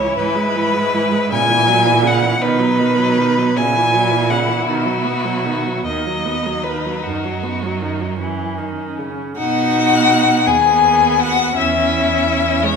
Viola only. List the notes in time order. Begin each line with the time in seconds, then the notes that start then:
0.01 E3
0.18 E3
0.36 G#3
0.56 E3
0.74 G#3
0.94 E3
1.12 G#3
1.31 C#3
1.50 E3
1.67 F#3
1.86 E3
2.03 C#3
2.23 E3
2.40 D#3
2.59 F#3
2.80 D#3
2.98 F#3
3.18 D#3
3.37 F#3
3.57 C#3
3.76 E3
3.94 F#3
4.11 E3
4.31 C#3
4.49 E3
4.67 D#3
4.86 F#3
5.05 B3
5.25 F#3
5.46 D#3
5.67 F#3
5.87 D#3
6.07 F#3
6.26 B3
6.46 F#3
6.64 D#3
6.85 F#3
7.05 D#3
7.24 F#3
7.43 B3
7.63 F#3
7.82 D#3
8.01 F#3
8.19 E3
8.58 D#3
8.98 C#3
9.38 D#4
10.47 B3
11.56 C#4
12.63 G#3